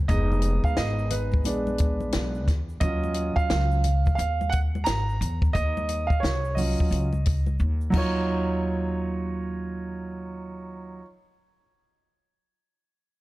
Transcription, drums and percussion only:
0.09 kick loud
0.09 closed hi-hat medium
0.09 shaker medium
0.32 high conga medium
0.32 shaker soft
0.42 closed hi-hat medium
0.42 shaker soft
0.64 kick medium
0.64 shaker medium
0.77 snare loud
0.77 closed hi-hat medium
0.77 shaker soft
0.99 shaker medium
1.10 closed hi-hat medium
1.10 low conga medium
1.10 shaker soft
1.32 kick medium
1.32 high conga soft
1.32 shaker soft
1.44 closed hi-hat loud
1.44 shaker medium
1.67 high conga medium
1.67 shaker soft
1.78 kick medium
1.78 closed hi-hat medium
1.78 shaker soft
2.00 high conga medium
2.00 shaker soft
2.12 snare loud
2.12 closed hi-hat loud
2.12 shaker medium
2.35 shaker soft
2.47 kick medium
2.47 snare soft
2.47 closed hi-hat medium
2.47 low conga medium
2.47 shaker soft
2.69 shaker soft
2.81 kick loud
2.81 closed hi-hat medium
2.81 shaker medium
3.04 high conga medium
3.04 shaker soft
3.14 closed hi-hat medium
3.14 shaker soft
3.36 kick medium
3.36 shaker medium
3.50 snare loud
3.50 closed hi-hat medium
3.50 shaker soft
3.71 shaker soft
3.84 closed hi-hat medium
3.84 low conga medium
3.84 shaker medium
4.06 kick medium
4.06 high conga soft
4.06 shaker soft
4.18 closed hi-hat medium
4.18 shaker medium
4.41 high conga medium
4.41 shaker soft
4.52 kick loud
4.52 closed hi-hat medium
4.52 shaker soft
4.75 high conga medium
4.75 shaker soft
4.86 snare loud
4.86 closed hi-hat loud
4.86 shaker medium
5.09 shaker soft
5.22 closed hi-hat medium
5.22 low conga medium
5.22 shaker soft
5.42 kick loud
5.42 shaker soft
5.55 kick loud
5.55 closed hi-hat medium
5.55 shaker medium
5.77 high conga medium
5.77 shaker soft
5.89 closed hi-hat medium
5.89 high conga soft
5.89 shaker soft
6.10 kick medium
6.10 shaker soft
6.24 snare loud
6.24 closed hi-hat medium
6.24 shaker soft
6.45 shaker medium
6.57 open hi-hat medium
6.57 low conga medium
6.57 shaker soft
6.79 kick medium
6.79 shaker soft
6.90 closed hi-hat medium
6.90 shaker medium
7.13 high conga medium
7.13 shaker soft
7.26 kick loud
7.26 closed hi-hat medium
7.26 shaker soft
7.46 high conga medium
7.46 shaker soft
7.59 shaker medium
7.81 shaker soft
7.92 kick loud
7.92 crash medium
7.92 high conga medium

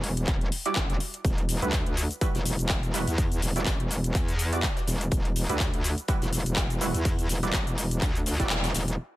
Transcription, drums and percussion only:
0.04 open hi-hat medium
0.17 closed hi-hat soft
0.27 kick loud
0.27 clap medium
0.27 closed hi-hat medium
0.41 closed hi-hat soft
0.52 open hi-hat loud
0.66 closed hi-hat medium
0.76 kick loud
0.76 clap loud
0.76 closed hi-hat medium
0.90 closed hi-hat soft
1.00 open hi-hat medium
1.14 closed hi-hat soft
1.25 kick loud
1.25 closed hi-hat medium
1.25 shaker soft
1.38 closed hi-hat soft
1.49 closed hi-hat medium
1.49 open hi-hat loud
1.49 shaker medium
1.62 closed hi-hat soft
1.62 shaker soft
1.72 kick loud
1.72 snare loud
1.72 clap loud
1.72 closed hi-hat medium
1.72 shaker soft
1.86 closed hi-hat soft
1.97 closed hi-hat medium
1.97 open hi-hat medium
1.97 shaker medium
2.11 closed hi-hat soft
2.11 shaker soft
2.21 kick loud
2.21 closed hi-hat medium
2.21 shaker soft
2.35 snare medium
2.35 closed hi-hat soft
2.35 shaker soft
2.45 closed hi-hat medium
2.45 open hi-hat loud
2.45 shaker medium
2.59 closed hi-hat medium
2.59 shaker soft
2.69 kick loud
2.69 snare loud
2.69 clap loud
2.69 closed hi-hat medium
2.69 shaker soft
2.83 closed hi-hat soft
2.83 shaker soft
2.94 closed hi-hat medium
2.94 open hi-hat medium
2.94 shaker medium
3.07 closed hi-hat soft
3.07 shaker soft
3.18 kick loud
3.18 closed hi-hat medium
3.18 open hi-hat medium
3.18 shaker soft
3.32 closed hi-hat soft
3.32 shaker soft
3.42 snare medium
3.42 closed hi-hat medium
3.42 open hi-hat medium
3.42 shaker medium
3.56 closed hi-hat medium
3.56 shaker soft
3.66 kick loud
3.66 snare loud
3.66 clap loud
3.66 closed hi-hat medium
3.66 shaker soft
3.80 closed hi-hat soft
3.91 closed hi-hat medium
3.91 open hi-hat medium
3.91 shaker medium
4.04 closed hi-hat soft
4.04 shaker soft
4.14 kick loud
4.14 clap medium
4.14 closed hi-hat medium
4.14 shaker soft
4.28 closed hi-hat soft
4.28 shaker soft
4.39 closed hi-hat medium
4.39 open hi-hat loud
4.39 shaker medium
4.53 closed hi-hat medium
4.53 shaker soft
4.63 kick loud
4.63 snare loud
4.63 clap loud
4.63 closed hi-hat medium
4.63 shaker soft
4.76 snare medium
4.76 closed hi-hat soft
4.76 shaker soft
4.87 snare medium
4.87 closed hi-hat medium
4.87 open hi-hat medium
4.87 shaker medium
5.01 closed hi-hat medium
5.01 shaker soft
5.11 kick loud
5.11 closed hi-hat medium
5.11 shaker soft
5.25 closed hi-hat soft
5.36 closed hi-hat medium
5.36 open hi-hat loud
5.36 shaker medium
5.49 closed hi-hat medium
5.49 shaker soft
5.60 kick loud
5.60 snare loud
5.60 clap loud
5.60 closed hi-hat medium
5.60 shaker soft
5.74 closed hi-hat soft
5.84 closed hi-hat medium
5.84 open hi-hat medium
5.84 shaker medium
5.98 closed hi-hat medium
5.98 shaker soft
6.08 kick loud
6.08 closed hi-hat medium
6.08 shaker soft
6.22 snare medium
6.22 closed hi-hat soft
6.22 shaker soft
6.33 closed hi-hat medium
6.33 open hi-hat loud
6.33 shaker medium
6.46 closed hi-hat medium
6.46 shaker soft
6.56 kick loud
6.56 snare loud
6.56 clap loud
6.56 closed hi-hat medium
6.56 shaker soft
6.70 closed hi-hat soft
6.70 shaker soft
6.81 closed hi-hat medium
6.81 open hi-hat medium
6.81 shaker medium
6.94 closed hi-hat medium
6.94 closed hi-hat soft
6.94 shaker soft
7.05 kick loud
7.05 closed hi-hat medium
7.05 open hi-hat medium
7.05 shaker soft
7.19 closed hi-hat soft
7.19 shaker soft
7.29 snare medium
7.29 closed hi-hat medium
7.29 open hi-hat medium
7.29 shaker medium
7.43 closed hi-hat medium
7.43 shaker soft
7.53 kick loud
7.53 snare loud
7.53 clap loud
7.53 closed hi-hat medium
7.53 shaker soft
7.67 closed hi-hat soft
7.67 shaker soft
7.77 closed hi-hat medium
7.77 open hi-hat medium
7.77 shaker medium
7.91 closed hi-hat medium
7.91 shaker soft
8.01 kick loud
8.01 clap medium
8.01 closed hi-hat medium
8.01 shaker soft
8.16 closed hi-hat soft
8.16 shaker soft
8.26 snare loud
8.26 closed hi-hat medium
8.26 open hi-hat loud
8.26 shaker medium
8.40 kick medium
8.40 snare soft
8.40 closed hi-hat medium
8.40 shaker soft
8.50 snare medium
8.50 clap loud
8.50 closed hi-hat medium
8.50 shaker soft
8.64 snare loud
8.64 closed hi-hat medium
8.64 closed hi-hat soft
8.64 shaker soft
8.75 snare loud
8.75 closed hi-hat medium
8.75 open hi-hat medium
8.75 shaker medium
8.88 closed hi-hat medium
8.88 shaker soft

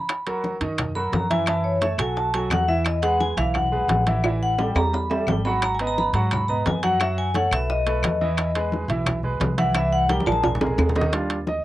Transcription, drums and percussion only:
0.09 high bongo medium
0.09 high conga soft
0.09 high timbale medium
0.09 claves medium
0.26 high bongo soft
0.26 high conga soft
0.26 high timbale medium
0.44 high bongo medium
0.44 high conga medium
0.61 high bongo soft
0.61 high timbale medium
0.78 high bongo medium
0.78 high conga soft
0.78 low conga medium
0.78 high timbale medium
0.78 claves medium
0.97 high conga soft
1.13 high bongo medium
1.13 low bongo medium
1.13 high conga medium
1.13 high timbale medium
1.13 low timbale medium
1.31 high bongo soft
1.31 high conga medium
1.31 high timbale medium
1.46 high bongo medium
1.46 high conga soft
1.46 high timbale medium
1.46 claves medium
1.65 high conga soft
1.82 high bongo medium
1.82 high conga medium
1.82 high timbale medium
1.99 high bongo soft
1.99 high conga soft
1.99 high timbale loud
1.99 claves medium
2.17 high bongo medium
2.17 high conga soft
2.34 high bongo soft
2.34 high conga soft
2.34 high timbale medium
2.50 high bongo medium
2.50 low bongo loud
2.50 high conga medium
2.50 high timbale medium
2.50 low timbale medium
2.50 claves medium
2.69 high bongo soft
2.85 high bongo medium
2.85 high conga soft
2.85 high timbale medium
2.85 claves medium
3.03 high bongo soft
3.03 high conga soft
3.03 high timbale medium
3.20 high bongo medium
3.20 high conga medium
3.38 high bongo soft
3.38 high timbale medium
3.54 high bongo medium
3.54 high conga soft
3.54 low conga medium
3.54 high timbale medium
3.54 claves medium
3.73 high conga soft
3.73 low conga medium
3.89 high bongo medium
3.89 low bongo medium
3.89 high conga medium
3.89 high timbale medium
3.89 low timbale medium
4.07 high bongo soft
4.07 high conga medium
4.07 high timbale medium
4.24 high bongo medium
4.24 high timbale medium
4.24 claves medium
4.42 high conga soft
4.58 high bongo medium
4.58 high conga medium
4.58 low timbale medium
4.76 high bongo soft
4.76 low timbale loud
4.76 claves medium
4.94 high bongo medium
4.94 high conga soft
4.94 low timbale medium
5.11 high bongo soft
5.11 high conga soft
5.11 low timbale loud
5.27 high bongo medium
5.27 low bongo medium
5.27 high conga medium
5.27 low timbale medium
5.27 claves medium
5.45 high bongo soft
5.45 low timbale medium
5.62 high bongo medium
5.62 high conga soft
5.62 high timbale medium
5.62 claves medium
5.79 high bongo soft
5.79 high conga soft
5.79 high timbale medium
5.98 high bongo medium
5.98 high conga medium
6.14 high bongo soft
6.14 high conga soft
6.14 high timbale medium
6.31 high bongo medium
6.31 high conga soft
6.31 low conga medium
6.31 high timbale medium
6.31 claves medium
6.50 high conga soft
6.50 low conga medium
6.66 high bongo medium
6.66 low bongo medium
6.66 high conga medium
6.66 high timbale medium
6.66 low timbale medium
6.83 high bongo soft
6.83 high conga medium
6.83 high timbale medium
7.00 high bongo medium
7.00 high timbale medium
7.00 claves medium
7.17 high conga soft
7.34 high bongo medium
7.34 high conga loud
7.34 high timbale medium
7.51 high bongo soft
7.51 high timbale loud
7.51 claves medium
7.69 high bongo medium
7.69 high conga soft
7.87 high bongo soft
7.87 high conga soft
7.87 high timbale medium
8.03 high bongo medium
8.03 low bongo medium
8.03 high conga medium
8.03 high timbale medium
8.03 claves medium
8.21 high bongo soft
8.37 high bongo medium
8.37 high conga soft
8.37 high timbale medium
8.37 claves medium
8.55 high bongo soft
8.55 high conga soft
8.55 high timbale medium
8.72 high bongo medium
8.72 high conga loud
8.89 high bongo soft
8.89 high conga soft
8.89 high timbale medium
9.06 high bongo medium
9.06 high conga soft
9.06 low conga medium
9.06 high timbale medium
9.06 claves medium
9.23 high conga soft
9.23 low conga medium
9.41 high bongo medium
9.41 low bongo medium
9.41 high conga medium
9.41 high timbale medium
9.41 low timbale medium
9.58 high bongo soft
9.58 high conga medium
9.58 high timbale medium
9.75 high bongo medium
9.75 high conga soft
9.75 high timbale medium
9.75 claves medium
9.92 high conga soft
10.09 high bongo medium
10.09 high conga medium
10.09 high timbale medium
10.20 high conga loud
10.27 high bongo soft
10.27 high timbale loud
10.27 claves medium
10.32 high conga loud
10.44 high bongo medium
10.44 low conga loud
10.44 high timbale medium
10.55 low conga medium
10.61 high bongo loud
10.61 low timbale medium
10.67 low conga medium
10.78 high bongo loud
10.78 low timbale medium
10.78 claves medium
10.89 low conga medium
10.96 low bongo medium
10.96 low timbale medium
11.01 low conga loud
11.13 high bongo medium
11.13 high conga soft
11.13 high timbale medium
11.30 high bongo soft
11.30 high conga soft
11.30 high timbale medium
11.47 high bongo medium
11.47 high conga medium

